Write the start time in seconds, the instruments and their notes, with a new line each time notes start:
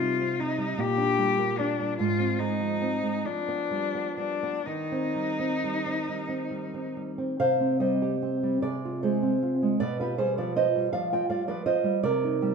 Already playing: nylon-string guitar C3 D#4, cello F4
0.01 nylon-string guitar G3
0.20 nylon-string guitar C4
0.39 nylon-string guitar D#4, cello D#4
0.58 nylon-string guitar G3
0.78 nylon-string guitar A#2, cello G4
0.98 nylon-string guitar D4
1.18 nylon-string guitar G3
1.38 nylon-string guitar A#3
1.58 cello D4, nylon-string guitar D4
1.81 nylon-string guitar G3
1.98 nylon-string guitar G#2, cello F4
2.19 nylon-string guitar C4
2.39 nylon-string guitar G#3, cello D#4
2.60 nylon-string guitar F3
2.82 nylon-string guitar C4
3.03 nylon-string guitar G#3
3.25 nylon-string guitar F3, cello D4
3.48 nylon-string guitar B3
3.71 nylon-string guitar G3
3.95 nylon-string guitar B3
4.17 nylon-string guitar G3, cello D4
4.43 nylon-string guitar B3
4.65 nylon-string guitar D#3, cello D#4
4.92 nylon-string guitar C4
5.15 nylon-string guitar G3
5.39 nylon-string guitar C4
5.64 nylon-string guitar G3
5.86 nylon-string guitar C4
6.08 nylon-string guitar G3
6.28 nylon-string guitar C4
6.51 nylon-string guitar G3
6.74 nylon-string guitar C4
6.97 nylon-string guitar G3
7.18 nylon-string guitar C4
7.39 nylon-string guitar C3 C5 F5
7.60 nylon-string guitar C4
7.80 nylon-string guitar G3 C5 D#5
8.02 nylon-string guitar G4
8.22 nylon-string guitar C4
8.43 nylon-string guitar G3
8.62 nylon-string guitar C3 G#4 D5
8.85 nylon-string guitar F4
9.03 nylon-string guitar G#3 G#4 C5
9.22 nylon-string guitar C4
9.43 nylon-string guitar F4
9.62 nylon-string guitar G#3
9.80 nylon-string guitar B2 B4 D5
10.00 nylon-string guitar F4 G4 B4
10.18 nylon-string guitar G3 G#4 C5
10.38 nylon-string guitar F3 B4 D5
10.56 nylon-string guitar F4 C5 D#5
10.76 nylon-string guitar G3
10.93 nylon-string guitar F3 D5 F5
11.12 nylon-string guitar F4 D#5 G5
11.29 nylon-string guitar G3 D5 F5
11.48 nylon-string guitar F3 B4 D5
11.66 nylon-string guitar F4 C5 D#5
11.84 nylon-string guitar G3
12.03 nylon-string guitar C3 A#4 D5
12.24 nylon-string guitar D#4
12.42 nylon-string guitar G3